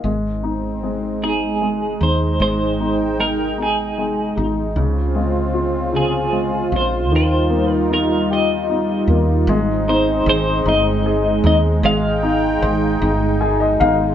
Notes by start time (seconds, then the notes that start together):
0.04 G#1 G#3 C4 D#4
0.43 D#4
0.83 G#3
1.23 D#4 G#4
1.62 G#3
2.01 D#2 D#4 C5
2.40 G#1 G#3 C5 G5
2.80 D#4
3.19 G#3 A#4
3.58 D#4
3.63 G#4
3.98 G#3
4.37 G#1 D#4
4.76 C#2 C#3 C4 F4
5.15 G#3
5.54 F4
5.93 C#3 G#4
6.32 G#3
6.72 A#1 F4
6.76 C5
7.11 D#2 D#3 G3 D#4
7.16 C5
7.50 A#3
7.74 A#4
7.90 D#4 A#4
8.31 G4 D#5
8.70 D#4
9.08 D#2 A#3
9.47 G#1 G#3 C4 D#4
9.88 D#4 C5
10.26 G#1 G#4 C5
10.65 G1 D#4 D#5
11.06 G#4
11.44 D#2 D#4 D#5
11.83 G#1 G#3 D#4 F5 G5
12.23 D#4
12.62 G#1 C5
13.01 G1 D#4
13.41 G#4 G#5
13.60 D#5
13.80 G#1 D#4 F5